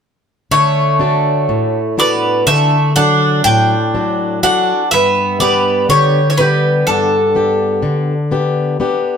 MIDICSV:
0, 0, Header, 1, 4, 480
1, 0, Start_track
1, 0, Key_signature, 2, "major"
1, 0, Tempo, 974026
1, 254, Time_signature, 9, 3, 24, 8
1, 4520, End_track
2, 0, Start_track
2, 0, Title_t, "Bouzouki"
2, 0, Program_c, 0, 25
2, 253, Note_on_c, 0, 73, 74
2, 958, Note_off_c, 0, 73, 0
2, 983, Note_on_c, 0, 74, 83
2, 1205, Note_off_c, 0, 74, 0
2, 1216, Note_on_c, 0, 76, 95
2, 1441, Note_off_c, 0, 76, 0
2, 1457, Note_on_c, 0, 78, 83
2, 1682, Note_off_c, 0, 78, 0
2, 1696, Note_on_c, 0, 79, 90
2, 2182, Note_off_c, 0, 79, 0
2, 2184, Note_on_c, 0, 78, 88
2, 2418, Note_off_c, 0, 78, 0
2, 2420, Note_on_c, 0, 76, 86
2, 2660, Note_off_c, 0, 76, 0
2, 2662, Note_on_c, 0, 74, 81
2, 2904, Note_off_c, 0, 74, 0
2, 2906, Note_on_c, 0, 73, 75
2, 3098, Note_off_c, 0, 73, 0
2, 3104, Note_on_c, 0, 73, 59
2, 3140, Note_off_c, 0, 73, 0
2, 3142, Note_on_c, 0, 71, 75
2, 3382, Note_off_c, 0, 71, 0
2, 3384, Note_on_c, 0, 69, 77
2, 4077, Note_off_c, 0, 69, 0
2, 4520, End_track
3, 0, Start_track
3, 0, Title_t, "Steel-string acoustic guitar"
3, 0, Program_c, 1, 25
3, 253, Note_on_c, 1, 50, 60
3, 491, Note_on_c, 1, 62, 45
3, 494, Note_on_c, 1, 66, 48
3, 496, Note_on_c, 1, 69, 53
3, 722, Note_off_c, 1, 50, 0
3, 734, Note_on_c, 1, 45, 66
3, 879, Note_off_c, 1, 62, 0
3, 880, Note_off_c, 1, 66, 0
3, 882, Note_off_c, 1, 69, 0
3, 975, Note_on_c, 1, 62, 45
3, 977, Note_on_c, 1, 66, 42
3, 980, Note_on_c, 1, 69, 52
3, 1203, Note_off_c, 1, 45, 0
3, 1217, Note_on_c, 1, 50, 61
3, 1361, Note_off_c, 1, 62, 0
3, 1363, Note_off_c, 1, 66, 0
3, 1364, Note_off_c, 1, 69, 0
3, 1460, Note_on_c, 1, 54, 41
3, 1461, Note_on_c, 1, 62, 45
3, 1463, Note_on_c, 1, 69, 49
3, 1685, Note_off_c, 1, 50, 0
3, 1702, Note_on_c, 1, 45, 67
3, 1845, Note_off_c, 1, 54, 0
3, 1845, Note_off_c, 1, 62, 0
3, 1845, Note_off_c, 1, 69, 0
3, 1944, Note_on_c, 1, 54, 41
3, 1944, Note_on_c, 1, 62, 44
3, 1946, Note_on_c, 1, 69, 50
3, 2167, Note_off_c, 1, 45, 0
3, 2179, Note_off_c, 1, 62, 0
3, 2181, Note_off_c, 1, 69, 0
3, 2184, Note_on_c, 1, 66, 43
3, 2185, Note_on_c, 1, 62, 47
3, 2187, Note_on_c, 1, 69, 50
3, 2327, Note_off_c, 1, 54, 0
3, 2374, Note_off_c, 1, 66, 0
3, 2375, Note_off_c, 1, 62, 0
3, 2377, Note_off_c, 1, 69, 0
3, 2424, Note_on_c, 1, 43, 65
3, 2661, Note_on_c, 1, 59, 50
3, 2664, Note_on_c, 1, 62, 48
3, 2668, Note_on_c, 1, 67, 52
3, 2887, Note_off_c, 1, 43, 0
3, 2903, Note_on_c, 1, 50, 67
3, 3044, Note_off_c, 1, 59, 0
3, 3046, Note_off_c, 1, 62, 0
3, 3047, Note_off_c, 1, 67, 0
3, 3149, Note_on_c, 1, 59, 48
3, 3150, Note_on_c, 1, 62, 45
3, 3154, Note_on_c, 1, 67, 51
3, 3366, Note_off_c, 1, 50, 0
3, 3389, Note_on_c, 1, 43, 62
3, 3528, Note_off_c, 1, 59, 0
3, 3528, Note_off_c, 1, 62, 0
3, 3529, Note_off_c, 1, 67, 0
3, 3622, Note_on_c, 1, 59, 46
3, 3625, Note_on_c, 1, 62, 45
3, 3628, Note_on_c, 1, 67, 53
3, 3847, Note_off_c, 1, 43, 0
3, 3857, Note_on_c, 1, 50, 66
3, 4001, Note_off_c, 1, 59, 0
3, 4003, Note_off_c, 1, 62, 0
3, 4005, Note_off_c, 1, 67, 0
3, 4098, Note_on_c, 1, 59, 50
3, 4100, Note_on_c, 1, 62, 46
3, 4102, Note_on_c, 1, 67, 50
3, 4318, Note_off_c, 1, 50, 0
3, 4330, Note_off_c, 1, 59, 0
3, 4333, Note_off_c, 1, 62, 0
3, 4335, Note_off_c, 1, 67, 0
3, 4336, Note_on_c, 1, 59, 46
3, 4339, Note_on_c, 1, 62, 43
3, 4341, Note_on_c, 1, 67, 56
3, 4520, Note_off_c, 1, 59, 0
3, 4520, Note_off_c, 1, 62, 0
3, 4520, Note_off_c, 1, 67, 0
3, 4520, End_track
4, 0, Start_track
4, 0, Title_t, "Bouzouki"
4, 0, Program_c, 2, 25
4, 256, Note_on_c, 2, 57, 75
4, 959, Note_off_c, 2, 57, 0
4, 979, Note_on_c, 2, 59, 68
4, 1202, Note_off_c, 2, 59, 0
4, 1217, Note_on_c, 2, 57, 78
4, 1442, Note_off_c, 2, 57, 0
4, 1461, Note_on_c, 2, 62, 83
4, 1684, Note_off_c, 2, 62, 0
4, 1706, Note_on_c, 2, 62, 78
4, 2164, Note_off_c, 2, 62, 0
4, 2183, Note_on_c, 2, 62, 72
4, 2405, Note_off_c, 2, 62, 0
4, 2432, Note_on_c, 2, 59, 86
4, 2650, Note_off_c, 2, 59, 0
4, 2668, Note_on_c, 2, 59, 73
4, 2887, Note_off_c, 2, 59, 0
4, 2912, Note_on_c, 2, 55, 69
4, 3095, Note_off_c, 2, 55, 0
4, 3104, Note_on_c, 2, 57, 45
4, 3137, Note_off_c, 2, 57, 0
4, 3157, Note_on_c, 2, 55, 62
4, 3371, Note_off_c, 2, 55, 0
4, 3394, Note_on_c, 2, 50, 60
4, 4082, Note_off_c, 2, 50, 0
4, 4520, End_track
0, 0, End_of_file